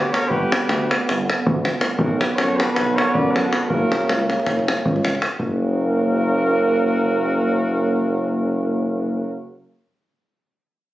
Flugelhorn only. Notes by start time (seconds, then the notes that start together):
Already playing: B4
0.11 C#5
0.29 B4
1.97 A#4
2.20 B4
2.36 C#5
2.56 B4
2.73 B4
2.96 C#5
3.13 D5
3.32 B4
3.68 A#4
5.41 A#4